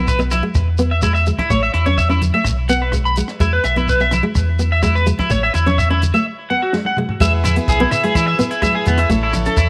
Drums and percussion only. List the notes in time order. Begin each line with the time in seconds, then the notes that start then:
0.07 kick, shekere
0.20 shekere
0.31 cross-stick, closed hi-hat, high conga, shekere
0.55 kick, cross-stick, shekere
0.78 closed hi-hat, shekere
1.02 kick, cross-stick, shekere
1.15 shekere
1.26 closed hi-hat, low conga, shekere
1.38 kick, cross-stick, high conga
1.50 kick, shekere
1.74 cross-stick, closed hi-hat
1.86 high conga, shekere
1.98 kick, shekere
2.11 shekere
2.22 closed hi-hat, high conga, low conga, shekere
2.44 kick, cross-stick, shekere
2.69 closed hi-hat, shekere
2.92 kick, cross-stick, shekere
3.06 shekere
3.16 closed hi-hat, shekere
3.28 cross-stick
3.40 kick, shekere
3.64 cross-stick, closed hi-hat, shekere
3.76 high conga, shekere
3.88 kick, shekere
4.00 shekere
4.11 cross-stick, closed hi-hat, high conga, low conga, shekere
4.35 kick, cross-stick, shekere
4.59 closed hi-hat, shekere
4.83 kick, cross-stick, shekere
4.96 shekere
5.06 closed hi-hat, low conga, shekere
5.19 kick, cross-stick, high conga
5.30 kick, low conga, shekere
5.54 cross-stick, closed hi-hat, low conga, shekere
5.68 high conga, shekere
5.78 kick, shekere
6.02 closed hi-hat, high conga, low conga, shekere
6.16 shekere
6.73 snare
6.85 high tom
6.97 mid tom
7.09 floor tom
7.20 kick, closed hi-hat, shekere
7.44 cross-stick, closed hi-hat, high conga, low conga, shekere
7.56 closed hi-hat, shekere
7.68 kick, closed hi-hat, shekere
7.80 high conga
7.91 cross-stick, closed hi-hat, low conga, shekere
8.04 closed hi-hat
8.15 kick, cross-stick, closed hi-hat, shekere
8.39 closed hi-hat, shekere
8.51 closed hi-hat, shekere
8.62 kick, cross-stick, closed hi-hat, high conga, shekere
8.85 closed hi-hat, low conga, shekere
8.98 cross-stick, closed hi-hat
9.10 kick, closed hi-hat, shekere
9.33 cross-stick, closed hi-hat, high conga, low conga, shekere
9.45 closed hi-hat, shekere
9.57 kick, closed hi-hat, shekere